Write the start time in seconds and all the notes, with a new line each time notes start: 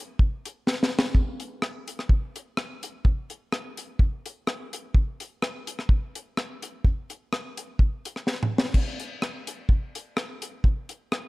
0.19 kick
0.45 closed hi-hat
0.67 snare
0.83 snare
0.99 snare
1.15 kick
1.40 closed hi-hat
1.62 cross-stick
1.88 closed hi-hat
1.99 cross-stick
2.09 kick
2.36 closed hi-hat
2.57 cross-stick
2.83 closed hi-hat
3.05 kick
3.30 closed hi-hat
3.52 cross-stick
3.77 closed hi-hat
3.99 kick
4.26 closed hi-hat
4.47 cross-stick
4.73 closed hi-hat
4.95 kick
5.20 closed hi-hat
5.42 cross-stick
5.67 closed hi-hat
5.79 cross-stick
5.89 kick
6.15 closed hi-hat
6.37 cross-stick
6.62 closed hi-hat
6.85 kick
7.10 closed hi-hat
7.33 cross-stick
7.57 closed hi-hat
7.79 kick
8.05 closed hi-hat
8.16 cross-stick
8.27 snare
8.43 mid tom
8.58 snare
8.74 kick, crash
9.00 closed hi-hat
9.22 cross-stick
9.47 closed hi-hat
9.69 kick
9.95 closed hi-hat
10.17 cross-stick
10.42 closed hi-hat
10.64 kick
10.89 closed hi-hat
11.12 cross-stick